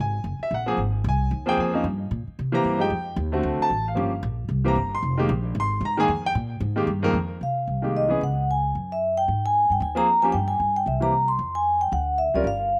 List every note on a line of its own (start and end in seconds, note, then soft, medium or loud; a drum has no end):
0.00 0.23 G#1 medium
0.00 0.39 G#5 medium
0.24 0.39 F#1 medium
0.39 0.52 E5 medium
0.39 muted upright bass stroke soft
0.51 0.76 A#1 medium
0.51 0.78 F#5 medium
0.66 0.76 F3 medium
0.66 0.77 A#3 medium
0.66 0.77 C4 medium
0.66 0.77 G#4 medium
0.77 1.03 G#1 medium
1.04 1.30 C2 loud
1.09 1.46 G#5 medium
1.31 1.57 D#2 medium
1.46 1.71 F3 medium
1.46 1.72 A#3 medium
1.46 1.72 C4 medium
1.46 1.73 G#4 medium
1.46 1.58 G5 loud
1.57 1.83 F2 medium
1.57 1.84 G#5 medium
1.73 1.83 F3 medium
1.73 1.83 A#3 medium
1.73 1.84 C#4 medium
1.73 1.84 D#4 medium
1.84 2.10 G2 medium
2.11 2.26 A#2 medium
2.27 muted upright bass stroke soft
2.39 2.64 C3 medium
2.52 2.78 E3 medium
2.52 2.78 A#3 medium
2.52 2.78 C4 medium
2.52 2.79 G4 medium
2.52 2.79 A#5 loud
2.64 2.89 G2 medium
2.78 2.88 F3 medium
2.78 2.89 G#3 medium
2.78 2.89 D#4 medium
2.78 2.90 G4 medium
2.78 3.15 G5 medium
2.90 3.16 F2 medium
3.16 3.42 D#2 loud
3.32 3.67 D3 medium
3.32 3.68 A3 medium
3.32 3.68 C4 medium
3.32 3.68 F#4 medium
3.43 3.58 D2 medium
3.59 3.85 A5 loud
3.59 muted upright bass stroke soft
3.70 3.96 A1 medium
3.88 4.21 F5 medium
3.95 4.22 G1 medium
3.95 4.10 F3 medium
3.95 4.10 A#3 medium
3.95 4.10 C#4 medium
3.95 4.11 G4 medium
4.23 4.48 A#1 loud
4.49 4.75 C2 medium
4.65 4.74 E3 medium
4.65 4.75 A#3 medium
4.65 4.75 C4 medium
4.65 4.75 G4 medium
4.65 4.91 A#5 medium
4.76 5.01 G1 medium
4.95 5.28 C6 medium
5.03 5.28 F1 medium
5.18 5.28 D#3 medium
5.18 5.28 G#3 medium
5.18 5.28 A#3 medium
5.18 5.28 G4 medium
5.29 5.54 A#1 loud
5.55 5.80 G#1 loud
5.60 5.82 C6 loud
5.81 6.07 G#2 medium
5.85 5.99 A#5 medium
5.97 6.07 D#3 medium
5.97 6.07 G#3 medium
5.97 6.08 A#3 medium
5.97 6.08 G#4 loud
5.97 6.24 G#5 loud
6.08 6.34 F2 medium
6.26 6.32 G5 loud
6.35 6.60 A#2 loud
6.60 6.86 G#2 loud
6.76 6.86 D#3 medium
6.76 6.86 G#3 medium
6.76 6.86 A#3 medium
6.76 6.87 G4 medium
6.87 7.13 G2 medium
7.03 7.13 F2 medium
7.03 7.13 D#3 medium
7.03 7.13 G#3 medium
7.03 7.13 A#3 medium
7.03 7.14 A#4 loud
7.13 7.39 F2 medium
7.41 7.66 C3 medium
7.41 7.91 F5 medium
7.67 8.18 C2 medium
7.82 8.08 D#3 medium
7.82 8.08 G#3 medium
7.82 8.09 A#3 soft
7.82 8.09 G4 medium
7.97 8.20 D#5 medium
8.09 8.19 E3 medium
8.09 8.19 B3 medium
8.09 8.20 C#4 medium
8.09 8.20 G#4 medium
8.21 8.71 C#2 medium
8.21 8.49 F#5 medium
8.51 8.93 G#5 medium
8.75 9.25 F#2 medium
8.92 9.16 E5 medium
9.17 9.42 G5 medium
9.28 9.67 G#2 medium
9.46 9.72 G#5 medium
9.70 9.80 G2 medium
9.70 9.81 G5 medium
9.80 10.31 D#2 medium
9.80 9.97 G#5 loud
9.95 10.05 F3 medium
9.95 10.06 A#3 medium
9.95 10.06 C4 medium
9.95 10.06 G#4 medium
9.95 10.24 A#5 loud
10.22 10.32 F3 medium
10.22 10.32 A#3 medium
10.22 10.33 C#4 medium
10.22 10.33 G4 medium
10.22 10.32 G#5 medium
10.32 10.58 G2 medium
10.32 10.40 G5 loud
10.48 10.76 G#5 medium
10.60 10.84 G2 medium
10.76 10.86 G5 medium
10.86 11.37 C2 medium
10.86 11.02 E5 medium
11.00 11.11 E3 medium
11.00 11.11 A#3 medium
11.00 11.12 C4 medium
11.00 11.12 G4 medium
11.00 11.27 A#5 loud
11.28 11.56 C6 medium
11.39 11.89 F2 medium
11.55 11.80 G#5 loud
11.81 11.93 G5 medium
11.92 12.32 D2 medium
11.92 12.17 F#5 loud
12.18 12.35 E5 medium
12.34 12.43 D2 medium
12.34 12.44 G3 medium
12.34 12.45 C#4 medium
12.34 12.45 F4 medium
12.34 12.45 A#4 medium
12.34 12.46 D5 medium
12.44 12.80 G1 medium
12.44 12.80 F5 medium